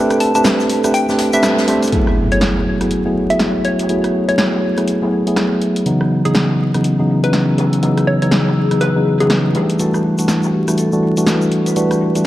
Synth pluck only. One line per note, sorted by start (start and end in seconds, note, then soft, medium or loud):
0.20 0.30 A5 medium
0.35 0.41 A5 medium
0.94 1.13 G5 medium
1.33 1.83 E5 medium
2.32 2.48 C#5 medium
3.30 3.46 E5 medium
3.65 3.84 C#5 medium
4.29 4.35 C#5 medium
4.38 4.48 C#5 medium
6.25 6.41 G#4 medium
7.24 7.40 B4 medium
8.07 8.17 C#5 medium
8.22 8.28 C#5 medium
8.81 9.00 B4 medium
9.20 9.61 G#4 medium